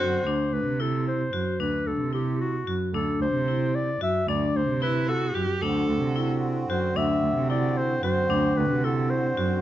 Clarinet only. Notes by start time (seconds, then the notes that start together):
0.00 C5
0.54 B4
0.81 A4
1.08 C5
1.60 B4
1.87 A4
2.14 G4
2.41 F#4
2.94 A4
3.22 C5
3.75 D5
4.03 E5
4.29 D5
4.56 C5
4.83 B4
5.09 A4
6.70 C5
6.97 E5
7.50 D5
7.77 C5
8.04 C5
8.58 B4
8.85 A4
9.10 C5